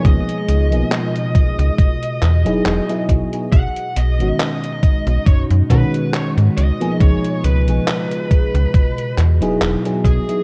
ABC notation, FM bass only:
X:1
M:4/4
L:1/16
Q:"Swing 16ths" 1/4=69
K:C#dor
V:1 name="FM bass" clef=bass
C,, z C,, B,,, z3 C,, z2 E,, E,,, E,,, z B,,, z | B,,, z B,,, G,,, z3 B,,, F,, F,, B,, z2 G,, C,, z | C,, z C,, B,,, z3 C,, z2 E,, E,,, E,,, z B,,, z |]